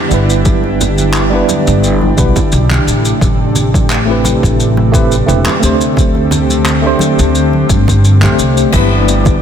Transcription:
0.00 2.82 D3 medium
0.00 5.93 D4 medium
0.00 2.82 E4 medium
0.00 5.93 G4 medium
0.08 1.40 G1 medium
0.08 1.27 G3 medium
0.08 1.28 B3 medium
0.08 1.28 D4 medium
0.08 1.29 E4 medium
0.08 shaker medium
0.14 1.30 B4 medium
0.30 shaker medium
0.45 kick loud
0.45 high conga medium
0.45 shaker medium
0.64 high bongo soft
0.81 low conga medium
0.81 shaker medium
0.98 high conga medium
0.98 shaker soft
1.14 clap medium
1.14 shaker medium
1.30 2.13 G3 medium
1.30 2.13 B3 medium
1.30 2.14 D4 medium
1.30 2.15 E4 medium
1.35 2.15 B4 medium
1.49 high bongo soft
1.49 high conga medium
1.49 shaker medium
1.67 2.09 G1 medium
1.67 shaker medium
1.84 shaker soft
2.01 high conga medium
2.17 2.30 B1 medium
2.17 2.39 G3 medium
2.17 2.39 B3 medium
2.17 2.39 D4 medium
2.17 2.40 E4 medium
2.17 2.40 B4 medium
2.17 kick medium
2.17 shaker medium
2.36 kick medium
2.36 low conga medium
2.36 shaker medium
2.52 2.76 B1 loud
2.52 shaker medium
2.70 clap medium
2.70 high conga medium
2.70 low conga medium
2.87 3.11 A1 medium
2.87 5.94 C3 medium
2.87 8.69 A3 medium
2.87 shaker medium
3.05 shaker medium
3.21 4.34 A1 medium
3.21 kick loud
3.21 high conga medium
3.21 shaker soft
3.55 low conga medium
3.55 shaker medium
3.74 kick medium
3.74 high conga medium
3.74 shaker soft
3.90 clap medium
3.90 shaker medium
4.06 4.88 A3 medium
4.06 4.89 C4 medium
4.06 4.90 E4 medium
4.10 4.90 G4 medium
4.10 4.91 B4 medium
4.24 high bongo medium
4.24 high conga medium
4.24 shaker medium
4.43 5.20 A1 medium
4.43 kick medium
4.43 shaker medium
4.60 shaker soft
4.77 high bongo medium
4.77 high conga medium
4.92 5.14 A3 loud
4.92 5.15 C4 medium
4.92 5.15 E4 medium
4.92 5.15 G4 medium
4.92 5.16 B4 loud
4.92 kick medium
4.92 low conga medium
4.92 shaker medium
5.12 shaker soft
5.26 5.41 E1 loud
5.26 5.49 A3 loud
5.26 5.49 C4 medium
5.26 5.49 E4 medium
5.26 5.50 G4 medium
5.26 5.50 B4 loud
5.26 shaker soft
5.46 clap medium
5.46 high conga medium
5.46 low conga medium
5.60 6.92 D2 medium
5.60 6.79 A3 medium
5.60 6.79 C4 medium
5.60 6.80 D4 medium
5.60 6.81 G4 medium
5.60 shaker medium
5.65 6.81 C5 loud
5.81 shaker medium
5.97 8.70 D3 medium
5.97 8.70 C4 medium
5.97 8.70 G4 medium
5.97 kick loud
5.97 high conga medium
5.97 shaker medium
6.15 high bongo soft
6.31 low conga medium
6.31 shaker medium
6.49 high conga medium
6.49 shaker soft
6.66 clap medium
6.66 shaker soft
6.82 7.64 A3 medium
6.82 7.65 C4 medium
6.82 7.66 D4 medium
6.86 7.66 G4 medium
6.86 7.67 C5 loud
6.99 high bongo medium
6.99 high conga medium
6.99 shaker medium
7.19 7.61 D2 medium
7.19 shaker medium
7.35 shaker soft
7.53 high conga medium
7.70 8.24 G2 medium
7.70 kick medium
7.70 shaker medium
7.88 kick medium
7.88 low conga medium
7.88 shaker medium
8.05 shaker soft
8.21 8.33 A1 medium
8.21 8.70 A3 medium
8.21 8.71 C4 medium
8.21 8.71 D4 medium
8.21 8.71 G4 medium
8.21 8.72 C5 loud
8.21 clap medium
8.21 high conga medium
8.21 low conga medium
8.39 8.63 C2 medium
8.39 shaker medium
8.57 shaker medium
8.70 9.42 G1 medium
8.70 9.42 E3 medium
8.70 9.42 G3 medium
8.70 9.42 B3 medium
8.70 9.42 D4 medium
8.70 9.42 E4 medium
8.70 9.42 G4 medium
8.70 9.42 D5 medium
8.70 kick loud
8.70 crash loud
8.70 high conga loud
8.70 shaker medium
8.76 9.42 B4 loud
9.09 shaker medium
9.25 kick loud
9.25 high conga medium
9.25 low conga medium
9.25 shaker soft

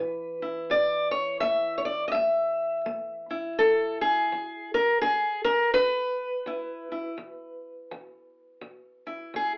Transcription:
0.00 0.64 A2 medium
0.00 4.30 E3 soft
0.00 0.42 E4 soft
0.00 0.41 B4 medium
0.42 1.88 E4 soft
0.70 1.36 A2 medium
0.70 1.11 D5 medium
1.11 1.40 C#5 medium
1.40 2.08 A3 medium
1.40 1.76 E5 loud
1.78 1.85 C#5 medium
1.85 2.07 D5 medium
2.08 2.11 D#5 medium
2.08 3.28 E5 medium
2.15 2.81 A3 medium
2.86 3.52 A3 medium
3.30 4.77 E4 soft
3.59 4.25 A3 medium
3.59 4.01 A4 medium
4.01 4.74 G#4 medium
4.32 4.98 E2 medium
4.74 5.01 A#4 medium
5.01 5.69 E2 medium
5.01 5.44 G#4 medium
5.44 5.73 A#4 loud
5.74 6.41 E2 medium
5.74 9.34 B4 loud
6.46 7.13 E2 medium
6.46 6.90 E4 soft
6.92 7.16 E4 soft
7.18 7.84 E2 medium
7.91 8.57 E2 medium
8.61 9.28 E2 medium
9.07 9.58 E4 soft
9.34 9.58 E2 medium
9.34 9.52 G#4 medium

